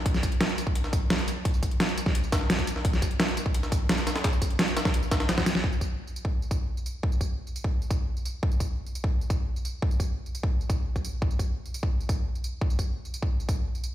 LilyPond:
\new DrumStaff \with { instrumentName = "Drums" } \drummode { \time 4/4 \tempo 4 = 172 <hh bd>16 <sn tamb>16 <hh bd tamb>16 hh16 <hh sn>16 <hh sn tamb>16 <hh tamb>16 bd16 hh16 <sn tamb>16 <hh bd tamb>8 <hh hho sn>16 <hh sn tamb>16 <hh tamb>8 | <hh bd>16 tamb16 <hh bd tamb>16 hh16 <hh sn>16 <hh tamb>16 <hh tamb>16 <bd sn>16 hh16 tamb16 <hh bd sn tamb>16 sn16 <hh sn>16 <hh bd sn tamb>16 <hh tamb>16 sn16 | <hh bd>16 <sn tamb>16 <hh bd tamb>16 hh16 <hh sn>16 <hh sn tamb>16 <hh tamb>16 bd16 hh16 <sn tamb>16 <hh bd tamb>8 <hh hho sn>16 <hh sn tamb>16 <hh sn tamb>16 <hh sn>16 | <hh bd sn>16 tamb16 <hh bd tamb>16 hh16 <hh sn>16 <hh tamb>16 <hh sn tamb>16 <hh bd sn>16 hh16 tamb16 <hh bd sn tamb>16 <hh sn>16 <hh sn>16 <hh bd sn tamb>16 <hh sn tamb>16 sn16 |
bd16 tamb16 <bd tamb>8 r16 tamb16 tamb16 bd16 r16 tamb16 <bd tamb>8 r16 tamb16 tamb8 | bd16 tamb16 <bd tamb>8 r16 tamb16 tamb16 bd16 r16 tamb16 <bd tamb>8 r16 tamb16 tamb8 | bd16 tamb16 <bd tamb>8 r16 tamb16 tamb16 bd16 r16 tamb16 <bd tamb>8 r16 tamb16 tamb8 | bd16 tamb16 <bd tamb>8 r16 tamb16 tamb16 bd16 r16 tamb16 <bd tamb>8 r16 <bd tamb>16 tamb8 |
bd16 tamb16 <bd tamb>8 r16 tamb16 tamb16 bd16 r16 tamb16 <bd tamb>8 r16 tamb16 tamb8 | bd16 tamb16 <bd tamb>8 r16 tamb16 tamb16 bd16 r16 tamb16 <bd tamb>8 r16 tamb16 tamb8 | }